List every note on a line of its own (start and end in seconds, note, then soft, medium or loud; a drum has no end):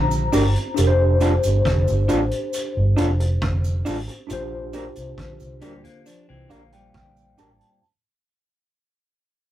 0.00 0.28 A#1 medium
0.00 0.72 D4 medium
0.00 0.73 F4 medium
0.00 0.74 G4 medium
0.00 0.75 C5 medium
0.00 0.73 A#5 medium
0.11 cabasa soft
0.32 0.53 G1 medium
0.32 0.43 D4 medium
0.32 0.43 G4 medium
0.32 0.43 A#4 medium
0.32 open hi-hat medium
0.32 cabasa medium
0.56 closed hi-hat soft
0.74 4.24 D4 medium
0.74 4.25 G4 medium
0.74 closed hi-hat medium
0.74 cabasa medium
0.79 1.36 F1 loud
0.79 4.26 A4 medium
0.79 0.85 A#4 medium
0.87 4.31 C5 medium
1.21 1.31 D4 medium
1.21 1.31 F4 medium
1.21 1.32 A4 medium
1.21 closed hi-hat medium
1.21 cabasa soft
1.43 1.63 G1 medium
1.43 closed hi-hat soft
1.43 cabasa medium
1.65 1.85 F1 medium
1.65 kick loud
1.65 cross-stick loud
1.65 closed hi-hat medium
1.88 2.07 G1 medium
1.88 cabasa medium
2.08 2.19 D4 loud
2.08 2.19 F4 loud
2.08 2.19 A4 loud
2.08 closed hi-hat medium
2.08 cabasa medium
2.31 closed hi-hat medium
2.53 closed hi-hat medium
2.53 cabasa medium
2.77 2.95 G1 medium
2.97 3.07 D4 medium
2.97 3.07 F4 medium
2.97 3.08 A4 medium
2.97 closed hi-hat medium
2.97 cabasa soft
3.20 muted clean electric guitar stroke medium
3.20 closed hi-hat medium
3.42 3.80 F1 medium
3.42 kick loud
3.42 cross-stick loud
3.42 closed hi-hat medium
3.64 cabasa soft
3.85 4.06 A1 medium
3.85 3.95 D4 medium
3.85 3.96 F4 medium
3.85 3.96 A4 medium
3.85 open hi-hat medium
3.85 cabasa medium
4.08 muted clean electric guitar stroke soft
4.08 closed hi-hat soft
4.27 4.88 A#1 loud
4.27 7.77 D4 medium
4.27 7.78 F4 medium
4.27 closed hi-hat medium
4.27 cabasa medium
4.31 7.79 G4 medium
4.31 7.80 C5 medium
4.73 4.83 D4 medium
4.73 4.84 G4 medium
4.73 4.84 A#4 medium
4.73 closed hi-hat medium
4.73 cabasa soft
4.95 5.15 C2 medium
4.95 closed hi-hat soft
4.95 cabasa medium
5.18 5.37 A#1 medium
5.18 kick loud
5.18 cross-stick loud
5.18 closed hi-hat medium
5.40 5.60 C2 medium
5.40 cabasa medium
5.61 5.82 D2 medium
5.61 5.83 A#2 medium
5.61 5.83 G3 medium
5.61 5.72 D4 medium
5.61 5.72 G4 medium
5.61 5.73 A#4 medium
5.61 closed hi-hat medium
5.61 cabasa medium
5.84 6.05 D3 medium
5.84 6.05 A#3 medium
5.84 closed hi-hat soft
6.06 6.28 F3 medium
6.06 6.27 D4 medium
6.06 closed hi-hat medium
6.06 cabasa medium
6.29 6.48 C2 medium
6.29 6.50 E3 medium
6.29 6.49 C4 medium
6.49 6.89 A#1 medium
6.49 6.72 D3 medium
6.49 6.72 A#3 medium
6.49 6.60 D4 medium
6.49 6.60 G4 medium
6.49 6.61 A#4 medium
6.49 6.71 F5 medium
6.49 closed hi-hat medium
6.49 cabasa soft
6.72 7.79 A#2 medium
6.72 7.79 G3 medium
6.72 6.93 G5 medium
6.72 muted clean electric guitar stroke soft
6.72 closed hi-hat medium
6.94 7.33 A#1 medium
6.94 7.36 G5 medium
6.94 kick loud
6.94 cross-stick medium
6.94 closed hi-hat medium
7.17 cabasa soft
7.38 7.59 A1 medium
7.38 7.48 D4 medium
7.38 7.48 G4 medium
7.38 7.49 A#4 medium
7.38 7.79 A5 medium
7.38 closed hi-hat medium
7.38 cabasa medium
7.61 closed hi-hat soft